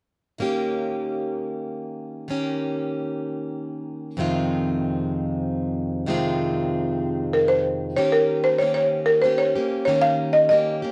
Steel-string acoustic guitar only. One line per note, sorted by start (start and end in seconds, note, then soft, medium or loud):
0.39 2.27 D#3 medium
0.39 2.28 A#3 medium
0.39 2.29 C#4 medium
0.39 2.30 G4 medium
2.28 4.18 D#3 medium
2.28 4.18 A#3 medium
2.28 4.19 C#4 medium
2.28 4.19 G4 medium
4.17 6.05 F2 medium
4.17 6.06 C3 medium
4.17 6.07 D#3 medium
4.17 6.07 G#3 medium
4.17 6.08 C4 medium
4.17 6.09 F4 medium
6.06 7.96 F2 medium
6.06 7.97 C3 medium
6.06 7.96 D#3 medium
6.06 7.97 G#3 medium
6.06 7.98 C4 medium
6.06 7.98 F4 medium
7.97 8.60 D#3 medium
7.97 8.60 A#3 medium
7.97 8.60 C#4 medium
7.97 8.61 G4 medium
8.60 9.23 D#3 soft
8.60 9.23 A#3 soft
8.60 9.24 C#4 soft
8.60 9.25 G4 medium
9.24 9.55 D#3 soft
9.24 9.56 A#3 soft
9.24 9.55 C#4 soft
9.24 9.54 G4 medium
9.55 9.87 A#3 soft
9.55 9.87 C#4 soft
9.55 9.87 G4 soft
9.87 10.49 D#3 medium
9.87 10.50 A#3 medium
9.87 10.51 C#4 medium
9.87 10.51 G4 medium
10.50 10.82 D#3 soft
10.50 10.82 A#3 soft
10.50 10.83 C#4 soft
10.50 10.81 G4 medium
10.82 10.92 A#3 soft
10.82 10.92 C#4 soft
10.82 10.92 G4 soft